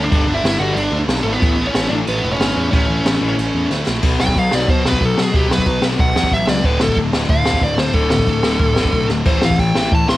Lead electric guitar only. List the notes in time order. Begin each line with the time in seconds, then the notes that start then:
0.03 D4 D5
0.34 E4 E5
0.60 F#4 F#5
0.73 D4 D5
1.23 A3 A4
1.33 B3 B4
1.67 C#4 C#5
1.89 D4 D5
2.09 B3 B4
2.33 C#4 C#5
2.71 C#4 C#5
4.21 G5
4.39 F5
4.54 D5
4.70 C5
4.88 B4
5.05 A4
5.22 G#4
5.36 G4
5.53 B4
6.00 F#5
6.34 E5
6.49 D5
6.65 B4
6.83 A4
7.30 F5
7.64 D5
7.79 C5
7.94 A4
8.10 A4
9.26 C5
9.45 F5
9.59 G5
9.95 A5
10.09 C6